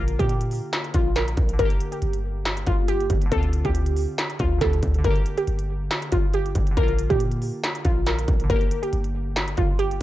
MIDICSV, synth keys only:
0, 0, Header, 1, 2, 480
1, 0, Start_track
1, 0, Key_signature, -2, "minor"
1, 0, Tempo, 431655
1, 1770, Time_signature, 4, 2, 24, 8
1, 11148, End_track
2, 0, Start_track
2, 0, Title_t, "Synth keys"
2, 0, Program_c, 0, 88
2, 0, Note_on_c, 0, 50, 61
2, 0, Note_on_c, 0, 58, 61
2, 0, Note_on_c, 0, 65, 74
2, 45, Control_c, 0, 64, 127
2, 1691, Note_off_c, 0, 50, 0
2, 1705, Note_on_c, 0, 50, 65
2, 1732, Note_off_c, 0, 58, 0
2, 1766, Note_off_c, 0, 65, 0
2, 1771, Note_on_c, 0, 58, 61
2, 1786, Control_c, 0, 64, 0
2, 1837, Note_on_c, 0, 67, 76
2, 1952, Control_c, 0, 64, 127
2, 3610, Note_off_c, 0, 50, 0
2, 3624, Note_on_c, 0, 50, 69
2, 3652, Note_off_c, 0, 58, 0
2, 3686, Note_off_c, 0, 67, 0
2, 3690, Note_on_c, 0, 60, 60
2, 3704, Control_c, 0, 64, 0
2, 3756, Note_on_c, 0, 65, 73
2, 3890, Control_c, 0, 64, 127
2, 5067, Note_off_c, 0, 50, 0
2, 5097, Note_on_c, 0, 50, 50
2, 5101, Note_off_c, 0, 60, 0
2, 5129, Note_on_c, 0, 60, 44
2, 5135, Note_off_c, 0, 65, 0
2, 5162, Note_on_c, 0, 67, 47
2, 5531, Note_off_c, 0, 50, 0
2, 5544, Note_on_c, 0, 50, 67
2, 5610, Note_off_c, 0, 60, 0
2, 5610, Note_on_c, 0, 58, 58
2, 5624, Control_c, 0, 64, 0
2, 5626, Note_off_c, 0, 67, 0
2, 5676, Note_on_c, 0, 67, 80
2, 5819, Control_c, 0, 64, 127
2, 7451, Note_off_c, 0, 50, 0
2, 7464, Note_on_c, 0, 50, 63
2, 7492, Note_off_c, 0, 58, 0
2, 7525, Note_off_c, 0, 67, 0
2, 7529, Note_on_c, 0, 58, 59
2, 7547, Control_c, 0, 64, 0
2, 7596, Note_on_c, 0, 65, 79
2, 7755, Control_c, 0, 64, 127
2, 9370, Note_off_c, 0, 50, 0
2, 9383, Note_on_c, 0, 50, 62
2, 9411, Note_off_c, 0, 58, 0
2, 9445, Note_off_c, 0, 65, 0
2, 9449, Note_on_c, 0, 58, 60
2, 9465, Control_c, 0, 64, 0
2, 9515, Note_on_c, 0, 67, 74
2, 9653, Control_c, 0, 64, 127
2, 11148, Note_off_c, 0, 50, 0
2, 11148, Note_off_c, 0, 58, 0
2, 11148, Note_off_c, 0, 67, 0
2, 11148, End_track
0, 0, End_of_file